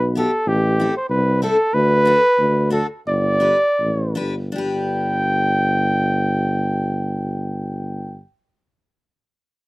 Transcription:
0.00 0.24 B1 medium
0.00 0.13 B4 loud
0.15 0.29 B3 soft
0.15 0.30 E4 soft
0.15 0.30 G4 medium
0.15 0.49 A4 medium
0.46 0.87 A1 loud
0.46 0.95 G4 loud
0.80 0.93 C4 medium
0.80 0.93 E4 medium
0.80 0.94 A4 medium
0.97 1.09 C5 medium
1.10 1.50 C2 loud
1.10 1.40 B4 medium
1.42 1.56 C4 medium
1.42 1.56 E4 medium
1.42 1.56 A4 medium
1.42 1.75 A4 loud
1.74 2.15 D2 loud
1.74 2.72 B4 loud
2.05 2.19 D4 medium
2.05 2.19 F#4 soft
2.05 2.20 A4 medium
2.39 2.82 D2 loud
2.70 2.85 D4 medium
2.70 2.86 F#4 medium
2.70 2.87 A4 medium
2.70 2.86 A4 medium
3.07 3.52 G1 medium
3.07 4.14 D5 loud
3.40 3.56 D4 medium
3.40 3.56 G4 medium
3.40 3.56 B4 medium
3.80 4.15 A1 medium
4.15 4.33 D4 medium
4.15 4.34 G4 medium
4.15 4.34 B4 medium
4.19 4.54 G1 medium
4.52 8.14 D4 medium
4.52 8.18 G4 medium
4.57 8.21 G1 medium
4.57 8.20 B4 medium
4.57 8.19 G5 medium

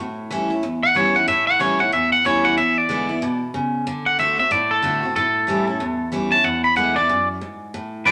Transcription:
0.00 0.60 A2 loud
0.30 0.50 E3 medium
0.30 0.50 G3 medium
0.30 0.50 C#4 loud
0.30 0.49 E4 loud
0.50 0.64 C#4 medium
0.50 0.63 E4 medium
0.63 1.25 E2 medium
0.83 0.96 F#5 loud
0.95 1.14 E3 medium
0.95 1.14 G3 medium
0.95 1.15 C#4 loud
0.95 1.13 E4 loud
0.95 1.15 C#5 medium
1.14 1.28 C#4 medium
1.14 1.27 E4 medium
1.14 1.28 F#5 medium
1.28 1.90 A2 loud
1.28 1.47 E5 loud
1.47 1.60 F#5 loud
1.59 1.79 E3 medium
1.59 1.79 G3 loud
1.59 1.80 C#4 loud
1.59 1.78 E4 loud
1.59 1.80 C#5 loud
1.79 1.93 C#4 soft
1.79 1.92 E4 medium
1.79 1.93 F#5 medium
1.92 2.55 E2 medium
1.92 2.12 E5 medium
2.12 2.25 F#5 loud
2.25 2.56 E3 medium
2.25 2.56 G3 medium
2.25 2.57 C#4 loud
2.25 2.57 E4 loud
2.25 2.45 C#5 medium
2.45 2.57 F#5 loud
2.58 3.20 E2 loud
2.58 2.78 E5 loud
2.78 3.40 D5 loud
2.89 3.08 D3 loud
2.89 3.09 G#3 medium
2.89 3.09 B3 loud
2.89 3.08 E4 medium
3.09 3.22 B3 medium
3.09 3.22 E4 medium
3.22 3.53 B2 medium
3.54 3.85 C#3 medium
3.87 4.17 D3 loud
4.06 4.19 F#5 loud
4.19 4.38 D3 medium
4.19 4.38 A3 medium
4.19 4.38 C4 medium
4.19 4.36 F#4 medium
4.19 4.38 E5 loud
4.38 4.51 C4 soft
4.38 4.50 F#4 medium
4.38 4.52 E5 medium
4.51 5.13 A2 loud
4.51 4.71 D5 loud
4.71 5.15 A4 loud
4.82 5.02 D3 medium
4.82 5.02 A3 loud
4.82 5.03 C4 loud
4.82 5.02 F#4 loud
5.03 5.16 C4 medium
5.03 5.15 F#4 medium
5.16 5.78 A2 loud
5.16 6.10 A4 loud
5.47 5.66 E3 medium
5.47 5.67 G3 loud
5.47 5.67 C#4 medium
5.47 5.66 E4 loud
5.67 5.81 C#4 medium
5.67 5.80 E4 medium
5.80 6.42 E2 medium
6.12 6.31 E3 medium
6.12 6.31 G3 loud
6.12 6.32 C#4 medium
6.12 6.30 E4 loud
6.31 6.45 C#4 medium
6.31 6.44 E4 medium
6.31 6.45 A5 loud
6.44 7.07 E2 loud
6.44 6.64 F#5 loud
6.64 6.76 B5 loud
6.76 6.95 D3 loud
6.76 6.96 G#3 loud
6.76 6.96 B3 loud
6.76 6.95 E4 medium
6.76 6.96 F#5 loud
6.96 7.10 B3 medium
6.96 7.09 E4 medium
6.96 7.28 D5 medium
7.09 7.41 F#2 medium
7.41 7.73 G#2 medium
7.74 8.11 A2 loud
8.05 8.11 E3 loud
8.05 8.11 G3 medium
8.05 8.11 C#4 medium
8.05 8.11 E4 medium
8.05 8.11 C#5 medium
8.05 8.11 E5 medium

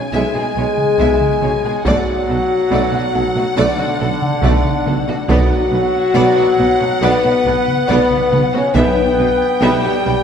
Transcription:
0.00 1.81 G#5 medium
0.12 0.20 B1 medium
0.12 0.21 B1 medium
0.12 0.22 B2 medium
0.12 0.33 G#3 medium
0.12 1.86 G#3 medium
0.12 1.86 G#4 loud
0.12 0.33 E5 medium
0.34 0.44 B2 medium
0.34 0.42 G#3 medium
0.34 0.42 G#4 medium
0.55 0.63 B1 medium
0.55 0.65 B1 medium
0.55 0.65 B2 medium
0.55 0.64 G#3 medium
0.55 0.65 C#5 medium
0.77 taiko mid medium
0.98 1.07 B1 medium
0.98 1.06 B1 medium
0.98 1.08 B2 medium
0.98 1.19 G#3 medium
0.98 1.19 E5 medium
0.98 taiko medium
1.20 taiko mid medium
1.42 1.50 B1 medium
1.42 1.51 B2 medium
1.42 1.50 G#3 medium
1.42 1.51 C#5 medium
1.42 taiko mid medium
1.64 1.72 B2 medium
1.64 1.72 G#3 medium
1.64 1.73 G#4 medium
1.84 1.94 B1 medium
1.84 1.94 B2 medium
1.84 3.54 F#3 medium
1.84 2.05 A3 medium
1.84 3.54 F#4 loud
1.84 2.06 D5 medium
1.84 5.27 F#5 medium
1.84 taiko loud
2.28 2.37 B1 medium
2.28 2.36 B2 medium
2.28 2.37 A3 medium
2.28 2.38 A4 medium
2.71 2.80 B1 medium
2.71 2.79 B2 medium
2.71 2.91 A3 medium
2.71 2.92 D5 medium
2.93 3.01 B2 medium
2.93 3.01 A3 medium
2.93 3.02 F#4 medium
3.14 3.22 B1 medium
3.14 3.23 B1 medium
3.14 3.22 B2 medium
3.14 3.22 A3 medium
3.14 3.22 A4 medium
3.35 3.43 B2 medium
3.35 3.44 A3 medium
3.35 3.44 F#4 medium
3.56 3.65 B1 medium
3.56 3.66 B1 loud
3.56 3.64 B2 medium
3.56 5.11 D3 medium
3.56 3.77 A3 medium
3.56 5.25 D4 loud
3.56 3.77 D5 medium
3.78 3.87 B2 medium
3.78 3.86 A3 medium
3.78 3.87 F#4 medium
4.00 4.08 B1 medium
4.00 4.09 B1 medium
4.00 4.08 B2 medium
4.00 4.08 A3 medium
4.00 4.08 A4 medium
4.22 taiko mid medium
4.42 4.50 B1 medium
4.42 4.52 B1 medium
4.42 4.51 B2 medium
4.42 4.63 A3 medium
4.42 4.63 D5 medium
4.42 taiko medium
4.64 taiko mid medium
4.85 4.94 B1 medium
4.85 4.95 B2 medium
4.85 4.93 A3 medium
4.85 4.94 A4 medium
4.85 taiko mid medium
5.06 5.16 B2 medium
5.06 5.14 A3 medium
5.06 5.16 F#4 medium
5.28 5.37 B1 loud
5.28 5.37 B1 medium
5.28 6.55 B2 medium
5.28 5.37 B2 loud
5.28 6.99 F#3 loud
5.28 5.49 B3 loud
5.28 6.85 F#4 loud
5.28 5.49 D5 medium
5.28 8.71 F#5 medium
5.28 taiko loud
5.70 5.80 B1 medium
5.70 5.79 B1 medium
5.70 5.80 B2 medium
5.70 5.78 B3 medium
5.70 5.80 B4 medium
6.14 6.23 B1 loud
6.14 6.23 B2 loud
6.14 6.35 B3 medium
6.14 6.35 D5 medium
6.36 6.46 B2 medium
6.36 6.44 B3 medium
6.36 6.45 F#4 medium
6.57 6.66 B1 medium
6.57 6.67 B1 medium
6.57 6.67 B2 medium
6.57 6.65 B3 medium
6.57 6.67 B4 medium
6.79 6.90 B2 medium
6.79 6.88 B3 medium
6.79 6.87 F#4 medium
7.02 7.11 B1 loud
7.02 7.10 B1 medium
7.02 7.11 B2 medium
7.02 7.22 B3 medium
7.02 7.87 B3 loud
7.02 7.87 B4 loud
7.02 7.22 D5 medium
7.23 7.33 B2 medium
7.23 7.33 B3 medium
7.23 7.31 F#4 medium
7.45 7.53 B1 medium
7.45 7.54 B1 medium
7.45 7.55 B2 medium
7.45 7.54 B3 medium
7.45 7.53 B4 medium
7.68 taiko mid medium
7.87 7.97 B1 medium
7.87 7.97 B1 loud
7.87 7.97 B2 medium
7.87 8.52 B3 loud
7.87 8.09 B3 medium
7.87 8.53 B4 loud
7.87 8.08 D5 medium
7.87 taiko medium
8.11 taiko mid medium
8.31 8.39 B1 medium
8.31 8.40 B1 medium
8.31 8.41 B2 medium
8.31 8.41 B3 medium
8.31 8.39 B4 medium
8.31 taiko mid medium
8.52 8.62 B2 medium
8.52 8.63 B3 medium
8.52 8.76 C#4 medium
8.52 8.60 F#4 medium
8.52 8.76 C#5 loud
8.74 8.82 B1 medium
8.74 8.84 B1 loud
8.74 10.01 B2 medium
8.74 8.84 B2 loud
8.74 9.62 B3 loud
8.74 8.96 B3 medium
8.74 9.62 B4 loud
8.74 8.95 E5 medium
8.74 10.23 G5 medium
8.74 taiko loud
9.18 9.27 B1 medium
9.18 9.26 B1 medium
9.18 9.28 B2 medium
9.18 9.28 B3 medium
9.18 9.26 B4 medium
9.61 9.70 B1 loud
9.61 9.71 B2 loud
9.61 10.23 G3 medium
9.61 9.82 B3 medium
9.61 10.23 G4 loud
9.61 9.82 E5 medium
9.83 9.92 B2 medium
9.83 9.92 B3 medium
9.83 9.91 G4 medium
10.04 10.14 B1 medium
10.04 10.13 B1 medium
10.04 10.14 B2 medium
10.04 10.13 B3 medium
10.04 10.12 B4 medium

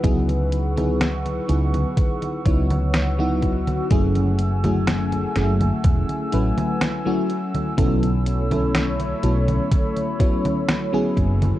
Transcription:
0.00 1.37 C#2 loud
0.00 0.71 F#3 medium
0.00 0.71 B3 medium
0.00 0.71 D#4 medium
0.00 0.71 E4 medium
0.00 3.87 B4 medium
0.00 7.74 F#5 medium
0.00 11.59 E6 medium
0.00 kick loud
0.00 closed hi-hat medium
0.00 high conga soft
0.04 0.71 G#4 loud
0.04 3.87 C#6 medium
0.29 closed hi-hat soft
0.29 high conga soft
0.52 closed hi-hat medium
0.76 1.43 F#3 medium
0.76 1.43 B3 medium
0.76 1.43 D#4 medium
0.76 1.43 E4 medium
0.76 1.44 G#4 medium
0.76 closed hi-hat soft
0.76 high conga medium
1.01 snare loud
1.01 closed hi-hat medium
1.01 high conga soft
1.26 closed hi-hat soft
1.26 high conga soft
1.48 1.83 C#2 medium
1.48 2.40 F#3 medium
1.48 2.40 B3 medium
1.48 2.40 D#4 medium
1.48 2.40 E4 medium
1.48 2.40 G#4 medium
1.48 closed hi-hat medium
1.74 closed hi-hat soft
1.74 high conga medium
1.97 kick loud
1.97 closed hi-hat medium
1.97 high conga soft
2.22 closed hi-hat soft
2.22 high conga soft
2.45 3.79 C#2 medium
2.45 3.13 F#3 medium
2.45 3.13 B3 medium
2.45 3.13 D#4 medium
2.45 3.13 E4 medium
2.45 3.13 C#5 medium
2.45 kick loud
2.45 closed hi-hat medium
2.70 closed hi-hat soft
2.70 high conga medium
2.94 snare loud
2.94 closed hi-hat medium
2.94 high conga soft
3.18 3.85 F#3 loud
3.18 3.85 B3 medium
3.18 3.85 D#4 medium
3.18 3.86 E4 medium
3.18 3.86 F#4 loud
3.18 high conga soft
3.42 kick medium
3.42 closed hi-hat soft
3.67 closed hi-hat soft
3.67 high conga medium
3.90 5.24 F#1 loud
3.90 4.58 F#3 medium
3.90 4.58 A3 medium
3.90 7.74 A3 medium
3.90 4.58 C#4 medium
3.90 4.59 E4 medium
3.90 4.59 G#4 loud
3.90 5.83 G#5 medium
3.90 kick loud
3.90 closed hi-hat medium
3.90 high conga soft
4.15 closed hi-hat soft
4.15 high conga soft
4.39 closed hi-hat medium
4.64 5.30 F#3 medium
4.64 5.30 A3 medium
4.64 5.31 C#4 medium
4.64 5.31 E4 medium
4.64 5.31 G#4 medium
4.64 closed hi-hat soft
4.64 high conga medium
4.87 snare loud
4.87 closed hi-hat medium
4.87 high conga soft
5.12 closed hi-hat soft
5.12 high conga soft
5.35 5.70 F#1 loud
5.35 6.27 F#3 medium
5.35 6.27 A3 medium
5.35 6.27 C#4 medium
5.35 6.27 E4 medium
5.35 6.28 G#4 medium
5.35 snare medium
5.35 closed hi-hat medium
5.61 closed hi-hat soft
5.61 high conga medium
5.84 6.02 E1 medium
5.84 7.76 G#5 medium
5.84 kick loud
5.84 closed hi-hat medium
5.84 high conga soft
6.09 closed hi-hat soft
6.09 high conga soft
6.32 6.50 A1 medium
6.32 7.00 F#3 medium
6.32 7.00 A3 medium
6.32 7.00 C#4 medium
6.32 7.00 E4 medium
6.32 7.01 B4 medium
6.32 closed hi-hat medium
6.58 closed hi-hat soft
6.58 high conga medium
6.81 snare loud
6.81 closed hi-hat medium
6.81 high conga soft
7.05 7.72 F#3 loud
7.05 7.72 A3 medium
7.05 7.72 C#4 medium
7.05 7.73 E4 medium
7.05 7.73 F#4 loud
7.05 high conga soft
7.30 closed hi-hat soft
7.55 closed hi-hat soft
7.55 high conga medium
7.77 9.12 B1 loud
7.77 8.45 F#3 loud
7.77 11.59 A3 medium
7.77 8.45 B3 medium
7.77 8.45 C#4 medium
7.77 8.46 E4 medium
7.77 8.46 A4 loud
7.77 11.59 C#5 medium
7.77 11.59 B5 medium
7.77 kick loud
7.77 closed hi-hat medium
7.77 high conga soft
8.03 closed hi-hat soft
8.03 high conga soft
8.26 closed hi-hat medium
8.51 9.17 F#3 medium
8.51 9.17 B3 medium
8.51 9.18 C#4 medium
8.51 9.18 E4 medium
8.51 9.18 A4 medium
8.51 closed hi-hat soft
8.51 high conga medium
8.75 snare loud
8.75 closed hi-hat loud
8.75 high conga soft
9.00 closed hi-hat soft
9.00 high conga soft
9.23 9.57 B1 loud
9.23 10.14 F#3 medium
9.23 10.14 B3 medium
9.23 10.14 C#4 medium
9.23 10.15 E4 medium
9.23 10.15 A4 medium
9.23 closed hi-hat medium
9.48 closed hi-hat soft
9.48 high conga medium
9.72 kick loud
9.72 closed hi-hat medium
9.72 high conga soft
9.97 closed hi-hat soft
9.97 high conga soft
10.19 10.87 F#3 medium
10.19 10.87 B3 medium
10.19 10.87 C#4 medium
10.19 10.88 E4 medium
10.19 10.88 C#5 medium
10.19 kick loud
10.19 closed hi-hat medium
10.45 closed hi-hat soft
10.45 high conga medium
10.69 snare loud
10.69 closed hi-hat medium
10.69 high conga soft
10.93 11.59 F#3 loud
10.93 11.59 B3 medium
10.93 11.59 C#4 medium
10.93 11.59 E4 medium
10.93 11.59 G#4 loud
10.93 high conga soft
11.17 11.51 F#1 loud
11.17 kick medium
11.17 closed hi-hat soft
11.42 closed hi-hat soft
11.42 high conga medium

